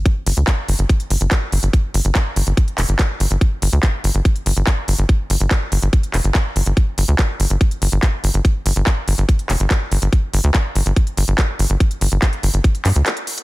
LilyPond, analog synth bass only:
\new Staff \with { instrumentName = "Analog synth bass" } { \clef bass \time 4/4 \tempo 4 = 143 r8 g,,16 d,16 r8 g,,16 g,,16 r8 g,,16 g,,16 r8 g,,16 g,,16 | r8 g,,16 g,,16 r8 g,,16 g,,16 r8 f,,16 g,,16 r8 g,,16 g,,16 | r8 g,,16 d,16 r8 g,,16 g,,16 r8 g,,16 g,,16 r8 g,,16 g,,16 | r8 g,,16 g,,16 r8 g,,16 g,,16 r8 f,,16 g,,16 r8 g,,16 g,,16 |
r8 g,,16 d,16 r8 g,,16 g,,16 r8 g,,16 g,,16 r8 g,,16 g,,16 | r8 g,,16 g,,16 r8 g,,16 g,,16 r8 f,,16 g,,16 r8 g,,16 g,,16 | r8 g,,16 d,16 r8 g,,16 g,,16 r8 g,,16 g,,16 r8 g,,16 g,,16 | r8 g,,16 g,,16 r8 g,,16 g,,16 r8 g,16 d,16 r4 | }